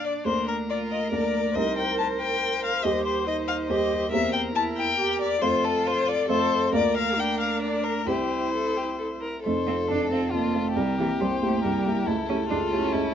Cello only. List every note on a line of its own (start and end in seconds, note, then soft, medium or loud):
0.00 0.66 D4 soft
0.71 1.13 F4 soft
1.14 2.82 A#4 medium
2.85 3.29 G4 soft
3.27 3.72 D#4 medium
3.70 4.13 G4 medium
4.13 4.54 C4 medium
4.55 4.98 E4 medium
4.99 5.41 G4 medium
5.43 6.28 F4 medium
6.29 6.72 A4 medium
6.73 7.19 A#4 medium
7.17 8.08 D4 medium
8.08 9.20 E4 soft
9.45 9.53 A3 medium
9.67 9.75 C4 medium
9.89 10.10 D4 medium
10.12 10.33 C4 medium
10.34 10.57 A#3 medium
10.55 10.78 A3 medium
10.77 10.99 G3 medium
10.99 11.07 E3 medium
11.20 11.28 G3 medium
11.42 11.65 A3 medium
11.63 12.06 G3 medium
12.06 12.14 A3 medium
12.29 12.37 C#4 medium
12.50 12.58 D4 medium
12.72 13.14 C#4 medium